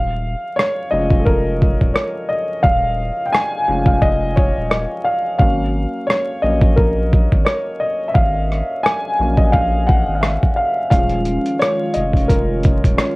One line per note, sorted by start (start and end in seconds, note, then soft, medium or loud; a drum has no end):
0.00 0.35 D#1 loud
0.00 0.52 F5 loud
0.56 0.92 C#5 loud
0.56 cross-stick loud
0.91 1.77 F1 loud
0.91 1.91 F3 medium
0.91 1.91 G#3 medium
0.91 1.92 C#4 medium
0.91 1.20 D#5 loud
1.10 kick loud
1.19 1.26 A4 medium
1.25 1.97 A#4 loud
1.25 kick medium
1.62 kick loud
1.81 1.94 D#1 loud
1.81 kick medium
1.94 2.02 C#5 medium
1.94 cross-stick loud
2.29 2.61 D#5 medium
2.63 3.11 D#1 loud
2.63 3.28 F5 loud
2.63 kick loud
3.26 3.32 G5 medium
3.32 3.89 G#5 loud
3.32 cross-stick loud
3.68 4.53 F1 medium
3.68 5.36 F3 medium
3.68 5.36 G#3 medium
3.68 5.36 C#4 medium
3.86 4.01 F5 medium
3.86 kick medium
4.02 4.37 D#5 loud
4.02 kick medium
4.36 4.72 C#5 medium
4.36 kick loud
4.57 4.86 D#1 medium
4.70 5.06 D#5 medium
4.70 cross-stick loud
5.04 5.37 F5 medium
5.39 5.87 G#1 loud
5.39 6.39 F#3 medium
5.39 6.39 A#3 soft
5.39 6.40 C#4 medium
5.39 6.10 F5 loud
5.39 kick loud
6.07 6.40 C#5 loud
6.07 cross-stick loud
6.42 7.28 A#1 medium
6.42 6.74 F#3 soft
6.42 6.74 A#3 soft
6.42 6.75 C#4 medium
6.42 6.78 D#5 medium
6.61 kick loud
6.76 7.48 A#4 medium
6.76 kick medium
7.13 kick loud
7.32 7.45 G#1 medium
7.32 kick medium
7.45 7.81 C#5 medium
7.45 cross-stick loud
7.80 8.07 D#5 medium
8.08 8.15 E5 medium
8.14 8.62 G#1 loud
8.14 8.86 F5 medium
8.14 kick loud
8.52 cross-stick soft
8.83 9.40 G#5 loud
8.83 cross-stick loud
9.19 10.04 A#1 medium
9.19 10.87 F#3 medium
9.19 10.88 A#3 soft
9.19 10.88 C#4 medium
9.37 9.53 D#5 medium
9.37 kick medium
9.52 9.85 F5 loud
9.52 kick medium
9.87 10.14 F#5 loud
9.87 kick loud
10.08 10.38 G#1 medium
10.15 10.22 F5 medium
10.21 10.57 E5 medium
10.21 cross-stick loud
10.43 kick medium
10.56 10.89 F5 medium
10.90 11.38 D#1 loud
10.90 13.16 D#3 medium
10.90 11.91 F3 medium
10.90 11.91 G#3 medium
10.90 13.16 G#3 medium
10.90 13.16 C#4 medium
10.90 11.91 C#4 medium
10.90 13.16 F4 medium
10.90 11.62 F5 loud
10.90 kick loud
10.90 closed hi-hat medium
11.09 closed hi-hat soft
11.25 closed hi-hat medium
11.46 closed hi-hat soft
11.59 11.92 C#5 loud
11.59 cross-stick loud
11.59 closed hi-hat medium
11.94 12.80 F1 medium
11.94 12.02 D#5 medium
11.94 closed hi-hat medium
12.13 kick medium
12.13 closed hi-hat medium
12.28 13.00 A#4 medium
12.28 kick medium
12.28 closed hi-hat medium
12.63 kick loud
12.63 closed hi-hat medium
12.84 12.97 D#1 medium
12.84 kick medium
12.84 closed hi-hat medium
12.98 13.16 C#5 medium
12.98 cross-stick loud
12.98 closed hi-hat medium